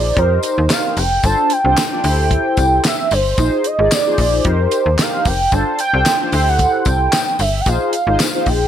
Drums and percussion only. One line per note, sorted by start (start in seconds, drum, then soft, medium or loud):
0.17 kick loud
0.17 closed hi-hat medium
0.43 closed hi-hat medium
0.43 tambourine medium
0.70 snare loud
0.70 clap medium
0.70 closed hi-hat loud
0.70 tambourine medium
0.97 open hi-hat medium
0.97 tambourine medium
1.23 kick loud
1.23 closed hi-hat loud
1.23 tambourine soft
1.50 closed hi-hat medium
1.50 tambourine soft
1.77 snare loud
1.77 clap medium
1.77 closed hi-hat medium
1.77 tambourine loud
2.04 open hi-hat medium
2.04 tambourine soft
2.31 kick loud
2.31 closed hi-hat medium
2.57 kick medium
2.57 closed hi-hat medium
2.57 tambourine medium
2.85 snare loud
2.85 clap medium
2.85 closed hi-hat loud
2.85 tambourine medium
3.11 open hi-hat medium
3.11 tambourine soft
3.38 kick loud
3.38 closed hi-hat medium
3.38 tambourine soft
3.64 closed hi-hat medium
3.91 snare loud
3.91 clap medium
3.91 closed hi-hat loud
3.91 tambourine loud
4.18 kick medium
4.18 open hi-hat medium
4.18 tambourine soft
4.45 kick loud
4.45 closed hi-hat medium
4.71 closed hi-hat medium
4.71 tambourine medium
4.99 snare loud
4.99 clap medium
4.99 closed hi-hat loud
4.99 tambourine medium
5.25 kick medium
5.25 open hi-hat medium
5.25 tambourine soft
5.52 kick loud
5.52 closed hi-hat medium
5.52 tambourine soft
5.79 closed hi-hat medium
5.79 tambourine soft
6.06 snare loud
6.06 clap medium
6.06 closed hi-hat medium
6.06 tambourine loud
6.32 open hi-hat medium
6.32 tambourine soft
6.59 kick loud
6.59 closed hi-hat medium
6.59 tambourine soft
6.85 kick medium
6.85 closed hi-hat medium
6.85 tambourine medium
7.13 snare loud
7.13 clap medium
7.13 closed hi-hat medium
7.13 tambourine medium
7.39 open hi-hat medium
7.39 tambourine soft
7.66 kick loud
7.66 closed hi-hat loud
7.66 tambourine soft
7.93 closed hi-hat medium
7.93 tambourine soft
8.20 snare loud
8.20 clap medium
8.20 closed hi-hat loud
8.20 tambourine loud
8.46 kick medium
8.46 open hi-hat medium
8.46 tambourine soft